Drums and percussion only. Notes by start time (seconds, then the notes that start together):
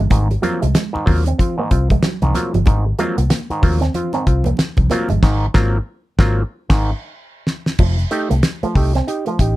0.10 kick, closed hi-hat, muted conga, low conga
0.31 closed hi-hat, muted conga
0.43 closed hi-hat, high conga
0.62 closed hi-hat
0.75 snare, closed hi-hat, muted conga
0.96 muted conga
1.07 kick, open hi-hat, high conga, low conga
1.26 closed hi-hat
1.39 kick, closed hi-hat, muted conga, high conga
1.71 kick, closed hi-hat
1.90 kick, closed hi-hat, high conga
2.03 snare, closed hi-hat, muted conga
2.22 closed hi-hat, muted conga, high conga
2.34 snare, closed hi-hat, low conga
2.54 closed hi-hat, high conga
2.66 kick, closed hi-hat, low conga
2.99 closed hi-hat, high conga
3.18 closed hi-hat
3.30 snare, closed hi-hat, muted conga
3.50 closed hi-hat
3.63 kick, open hi-hat, high conga, low conga
3.82 snare, closed hi-hat
3.94 closed hi-hat, muted conga, high conga
4.13 closed hi-hat, muted conga
4.27 kick, closed hi-hat
4.44 closed hi-hat, high conga
4.57 snare, closed hi-hat, muted conga
4.77 kick, closed hi-hat, muted conga, high conga
4.90 snare, closed hi-hat, low conga
5.09 closed hi-hat, high conga
5.23 kick, snare, crash
5.54 kick, snare
6.19 kick, snare
6.70 kick, snare, crash
7.47 snare
7.66 snare
7.78 kick, crash
7.99 closed hi-hat
8.11 closed hi-hat
8.31 closed hi-hat
8.43 snare, closed hi-hat
8.63 closed hi-hat
8.75 kick, open hi-hat
8.95 snare, closed hi-hat
9.08 closed hi-hat
9.26 closed hi-hat
9.39 kick, closed hi-hat